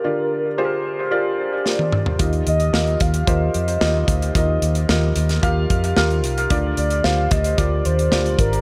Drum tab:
HH |----------------|xxxx-xxxx-xx--xx|x-xx--xxx-xx-xxx|x-xx--xxx-xx-xxx|
SD |------------o---|----o-------o---|----o--o----o---|----o-------o---|
T1 |-------------o--|----------------|----------------|----------------|
T2 |--------------o-|----------------|----------------|----------------|
FT |---------------o|----------------|----------------|----------------|
BD |----------------|o-----o-o-----o-|o-------o-o-----|o-----o-o-----o-|